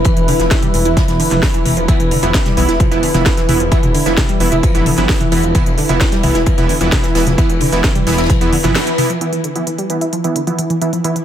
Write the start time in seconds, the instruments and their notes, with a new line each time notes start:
Already playing: synth drone E3 E4, ambient pad E4 B4 B5
0.04 synth arpeggio sound E3, kick, closed hi-hat, ride
0.17 detuned saw bass E1, synth arpeggio sound E3, closed hi-hat
0.28 synth arpeggio sound D3, open hi-hat, mid tom, ride
0.40 detuned saw bass E1, synth arpeggio sound F3, snare, closed hi-hat
0.51 synth arpeggio sound E3, kick, snare, closed hi-hat, ride
0.62 synth arpeggio sound G3, closed hi-hat, mid tom
0.74 detuned saw bass E1, synth arpeggio sound E3, open hi-hat, ride
0.85 detuned saw bass E1, synth arpeggio sound E4, closed hi-hat, ride
0.97 synth arpeggio sound F3, kick, snare, closed hi-hat, mid tom, ride
1.08 detuned saw bass E1, synth arpeggio sound E3, snare, closed hi-hat
1.20 synth arpeggio sound D3, open hi-hat, ride
1.31 detuned saw bass E1, synth arpeggio sound F3, snare, closed hi-hat, mid tom
1.43 synth arpeggio sound E3, kick, snare, open hi-hat, ride
1.54 synth arpeggio sound E3, closed hi-hat
1.65 detuned saw bass E1, synth arpeggio sound E3, snare, open hi-hat, mid tom, ride
1.77 detuned saw bass E1, synth arpeggio sound F3, closed hi-hat
1.88 synth arpeggio sound E3, supersaw synth E3 B3 E4, kick, closed hi-hat, ride
2.00 detuned saw bass E1, synth arpeggio sound E3, closed hi-hat
2.11 synth arpeggio sound D3, open hi-hat, mid tom, ride
2.23 detuned saw bass E1, supersaw synth E3 B3 E4, synth arpeggio sound F3, closed hi-hat, ride
2.34 synth arpeggio sound E3, kick, snare, closed hi-hat, ride
2.46 synth arpeggio sound G3, snare, closed hi-hat, mid tom
2.57 detuned saw bass B1, supersaw synth E3 B3 E4, synth arpeggio sound E3, open hi-hat, ride
2.69 detuned saw bass E1, synth arpeggio sound E4, snare, closed hi-hat
2.80 synth arpeggio sound F3, kick, closed hi-hat, mid tom, ride
2.91 detuned saw bass E1, supersaw synth E3 B3 E4, synth arpeggio sound E3, closed hi-hat
3.03 synth arpeggio sound D3, open hi-hat, ride
3.14 detuned saw bass E1, supersaw synth E3 B3 E4, synth arpeggio sound F3, snare, closed hi-hat, mid tom
3.25 synth arpeggio sound E3, kick, snare, closed hi-hat, ride
3.37 synth arpeggio sound E3, snare, closed hi-hat
3.49 detuned saw bass E1, supersaw synth E3 B3 E4, synth arpeggio sound E3, open hi-hat, mid tom, ride
3.60 detuned saw bass E1, synth arpeggio sound F3, closed hi-hat
3.71 synth arpeggio sound E3, supersaw synth E3 B3 E4, kick, closed hi-hat, ride
3.83 detuned saw bass E1, synth arpeggio sound E3, closed hi-hat, mid tom
3.95 synth arpeggio sound D3, open hi-hat, ride
4.06 detuned saw bass E1, supersaw synth E3 B3 E4, synth arpeggio sound F3, snare, closed hi-hat
4.17 synth arpeggio sound E3, kick, snare, closed hi-hat, mid tom, ride
4.29 synth arpeggio sound G3, closed hi-hat
4.40 detuned saw bass E1, synth arpeggio sound E3, supersaw synth E3 B3 E4, open hi-hat, ride
4.52 detuned saw bass E1, synth arpeggio sound E4, closed hi-hat, mid tom, ride
4.63 synth arpeggio sound F3, kick, closed hi-hat, ride
4.75 detuned saw bass G1, supersaw synth E3 B3 E4, synth arpeggio sound E3, closed hi-hat
4.86 synth arpeggio sound D3, open hi-hat, mid tom, ride
4.98 detuned saw bass G1, supersaw synth E3 B3 E4, synth arpeggio sound F3, snare, closed hi-hat
5.09 synth arpeggio sound E3, kick, snare, open hi-hat, ride
5.21 synth arpeggio sound E3, closed hi-hat, mid tom
5.32 detuned saw bass E1, supersaw synth E3 B3 E4, synth arpeggio sound E3, snare, open hi-hat, ride
5.43 detuned saw bass E1, synth arpeggio sound F3, closed hi-hat
5.55 synth arpeggio sound E3, supersaw synth E3 B3 E4, kick, closed hi-hat, mid tom, ride
5.66 detuned saw bass E1, synth arpeggio sound E3, closed hi-hat
5.78 synth arpeggio sound D3, open hi-hat, ride
5.89 detuned saw bass E1, supersaw synth E3 B3 E4, synth arpeggio sound F3, closed hi-hat, mid tom, ride
6.01 synth arpeggio sound E3, kick, snare, closed hi-hat, ride
6.12 synth arpeggio sound G3, snare, closed hi-hat
6.23 detuned saw bass B1, synth arpeggio sound E3, supersaw synth E3 B3 E4, open hi-hat, mid tom, ride
6.35 detuned saw bass E1, synth arpeggio sound E4, snare, closed hi-hat
6.46 synth arpeggio sound F3, kick, closed hi-hat, ride
6.58 detuned saw bass E1, supersaw synth E3 B3 E4, synth arpeggio sound E3, closed hi-hat, mid tom
6.69 synth arpeggio sound D3, open hi-hat, ride
6.81 detuned saw bass E1, supersaw synth E3 B3 E4, synth arpeggio sound F3, closed hi-hat
6.92 synth arpeggio sound E3, kick, snare, closed hi-hat, mid tom, ride
7.03 synth arpeggio sound E3, snare, closed hi-hat
7.15 detuned saw bass E1, synth arpeggio sound E3, supersaw synth E3 B3 E4, snare, open hi-hat, ride
7.26 detuned saw bass E1, synth arpeggio sound F3, snare, closed hi-hat, mid tom
7.38 synth arpeggio sound E3, supersaw synth E3 B3 E4, kick, closed hi-hat, ride
7.49 detuned saw bass E1, synth arpeggio sound E3, closed hi-hat
7.60 synth arpeggio sound D3, open hi-hat, mid tom, ride
7.72 detuned saw bass E1, supersaw synth E3 B3 E4, synth arpeggio sound F3, snare, closed hi-hat
7.84 synth arpeggio sound E3, kick, snare, closed hi-hat, ride
7.95 synth arpeggio sound G3, closed hi-hat, mid tom
8.07 detuned saw bass E1, synth arpeggio sound E3, supersaw synth E3 B3 E4, snare, open hi-hat, ride
8.12 snare, ride
8.18 detuned saw bass E1, synth arpeggio sound E4, snare, closed hi-hat, ride
8.24 snare, ride
8.30 synth arpeggio sound F3, kick, closed hi-hat, mid tom, ride
8.41 detuned saw bass E2, supersaw synth E3 B3 E4, synth arpeggio sound E3, closed hi-hat
8.53 synth arpeggio sound D3, open hi-hat, ride
8.64 detuned saw bass G1, supersaw synth E3 B3 E4, synth arpeggio sound F3, snare, closed hi-hat, mid tom
8.75 synth arpeggio sound E3, snare, open hi-hat, ride
8.87 synth arpeggio sound E3, closed hi-hat
8.98 supersaw synth E3 B3 E4, synth arpeggio sound E3, open hi-hat, mid tom, ride
9.10 synth arpeggio sound F3, closed hi-hat
9.21 synth arpeggio sound E3, supersaw synth E3 B3 E4, synth drone E3 E4, ambient pad E4, closed hi-hat
9.33 synth arpeggio sound E3, closed hi-hat
9.44 synth arpeggio sound D3, ambient pad B4, closed hi-hat
9.56 supersaw synth E3 B3 E4, synth arpeggio sound F3, closed hi-hat
9.67 synth arpeggio sound E3, ambient pad B5, closed hi-hat
9.78 synth arpeggio sound G3, closed hi-hat
9.90 synth arpeggio sound E3, supersaw synth E3 B3 E4, closed hi-hat
10.01 synth arpeggio sound E4, closed hi-hat
10.13 synth arpeggio sound F3, closed hi-hat
10.24 synth arpeggio sound E3, supersaw synth E3 B3 E4, closed hi-hat
10.36 synth arpeggio sound D3, closed hi-hat
10.47 supersaw synth E3 B3 E4, synth arpeggio sound F3, closed hi-hat
10.59 synth arpeggio sound E3, closed hi-hat
10.70 synth arpeggio sound E3, closed hi-hat
10.81 synth arpeggio sound E3, supersaw synth E3 B3 E4, closed hi-hat
10.93 synth arpeggio sound F3, closed hi-hat
11.04 synth arpeggio sound E3, supersaw synth E3 B3 E4, closed hi-hat
11.16 synth arpeggio sound E3, closed hi-hat